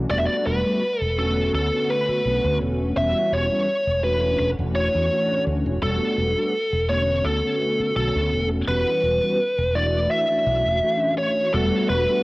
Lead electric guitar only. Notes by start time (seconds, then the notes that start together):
0.11 D5
0.18 E5
0.26 D5
0.47 B4
1.02 A4
1.19 A4
1.55 A4
1.90 B4
2.97 E5
3.33 C#5
4.04 B4
4.39 B4
4.75 C#5
5.83 A4
6.89 C#5
7.25 A4
7.96 A4
8.68 B4
9.75 D5
10.11 E5
11.18 C#5
11.53 A4
11.89 B4